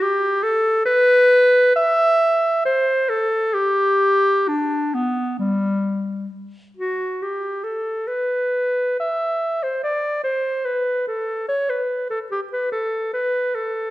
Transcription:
\new Staff \with { instrumentName = "Clarinet" } { \time 4/4 \key g \major \tempo 4 = 69 g'8 a'8 b'4 e''4 c''8 a'8 | g'4 d'8 b8 g4 r8 fis'8 | \key b \phrygian g'8 a'8 b'4 e''8. c''16 d''8 c''8 | b'8 a'8 cis''16 b'8 a'16 g'16 b'16 a'8 b'8 a'8 | }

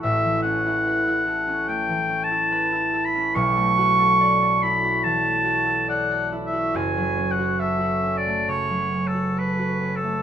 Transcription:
<<
  \new Staff \with { instrumentName = "Oboe" } { \time 4/4 \key a \major \tempo 4 = 70 e''8 fis''4. \tuplet 3/2 { g''4 a''8~ a''4 b''8 } | cis'''4. b''8 a''4 \tuplet 3/2 { fis''4 e''8 } | \tuplet 3/2 { gis''4 fis''8 e''4 d''8 cis''4 a'8 b'4 a'8 } | }
  \new Staff \with { instrumentName = "Harp" } { \time 4/4 \key a \major <a,, a, a e' a'>16 e16 cis'16 e'16 b'16 e'16 a'16 cis'16 a16 e16 cis'16 e'16 b'16 e'16 a'16 cis'16 | <b,, b,>16 a16 fis'16 a'16 d''16 a'16 e'16 fis'16 e16 a16 fis'16 a'16 d''16 a'16 e'16 fis'16 | <fis,, fis,>16 fis16 cis'16 fis'16 a'16 fis'16 cis'16 a16 cis16 fis16 cis'16 fis'16 a'16 fis'16 cis'16 a16 | }
>>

